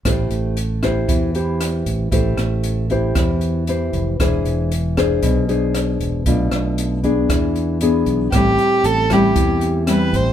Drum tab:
HH |xxxxxxxx|xxxxxxxx|xxxxxxxx|xxxxxxxx|
SD |r--r--r-|-r--r---|r--r--r-|-r--r---|
BD |o--oo--o|o--oo--o|o--oo--o|o--oo--o|

HH |xxxxxxxx|
SD |r--r--r-|
BD |o--oo--o|